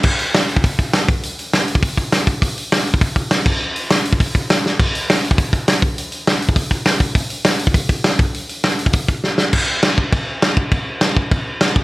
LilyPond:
\new DrumStaff \with { instrumentName = "Drums" } \drummode { \time 4/4 \tempo 4 = 203 <cymc bd>8 hho8 <hho sn>8 hho16 bd16 <hho bd>8 <hho bd>8 <hho sn>8 <hho bd>8 | hho8 hho8 <hho sn>8 hho16 bd16 <hho bd>8 <hho bd>8 <hho sn>8 <hho bd>8 | <hho bd>8 hho8 <hho sn>8 hho16 bd16 <hho bd>8 <hho bd>8 <hho sn>8 <cymc bd>8 | r8 hho8 <hho sn>8 hho16 bd16 <hho bd>8 <hho bd>8 <hho sn>8 sn8 |
<cymc bd>8 hho8 <hho sn>8 hho16 bd16 <hho bd>8 <hho bd>8 <hho sn>8 <hho bd>8 | hho8 hho8 <hho sn>8 hho16 bd16 <hho bd>8 <hho bd>8 <hho sn>8 <hho bd>8 | <hho bd>8 hho8 <hho sn>8 hho16 bd16 <hho bd>8 <hho bd>8 <hho sn>8 <hho bd>8 | hho8 hho8 <hho sn>8 hho16 bd16 <hho bd>8 <hho bd>8 sn8 sn8 |
<cymc bd>4 <cymc sn>8 bd8 <cymc bd>4 <cymc sn>8 bd8 | <cymc bd>4 <cymc sn>8 bd8 <cymc bd>4 <cymc sn>8 bd8 | }